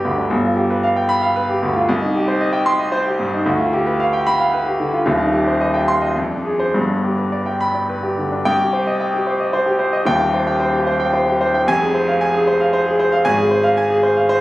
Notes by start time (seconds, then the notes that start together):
Already playing: G1 D4 G4 B4 D5 G5 B5
0.04 D2
0.18 D4
0.30 G1
0.44 F4
0.57 G4
0.70 B4
0.83 F5
0.96 G5
1.09 B5
1.22 F5
1.36 B4
1.49 G4
1.62 D2
1.76 F4
1.89 C2
2.02 D#4
2.15 G4
2.28 C5
2.41 D#5
2.53 G5
2.66 C6
2.79 D#5
2.92 C5
3.06 G4
3.19 G2
3.33 D#4
3.46 D2
3.59 F4
3.73 G4
3.87 B4
4.00 F5
4.13 G5
4.27 B5
4.40 F5
4.54 B4
4.66 G4
4.80 D3
4.93 F4
5.06 D#1 D#2
5.20 D#4
5.33 G4
5.47 C5
5.61 D#5
5.74 G5
5.88 C6
6.02 D#5
6.16 F2
6.30 D4
6.45 G#4
6.59 C5
6.74 G1 G2
6.89 D4
7.04 G4
7.18 B4
7.32 D5
7.46 G5
7.61 B5
7.74 D5
7.89 B4
8.03 G4
8.18 D3
8.32 D4
8.45 C2 G5
8.60 G4
8.73 C5
8.87 D#5
9.00 G5
9.14 G4
9.27 C5
9.40 D#5
9.53 C5
9.66 G4
9.79 C5
9.93 D#5
10.05 D#1 D#2 G5
10.20 G4
10.34 C5
10.47 G5
10.60 C5
10.73 G4
10.87 C5
11.00 G5
11.13 C5
11.27 G4
11.41 C5
11.54 G5
11.67 F1 F2 G#5
11.81 G#4
11.95 C5
12.08 F5
12.21 G#5
12.34 G#4
12.47 C5
12.60 F5
12.73 C5
12.86 G#4
12.99 C5
13.12 F5
13.25 G#1 G#5
13.38 G#4
13.51 C5
13.64 F5
13.77 G#5
13.90 G#4
14.03 C5
14.17 F5
14.29 C5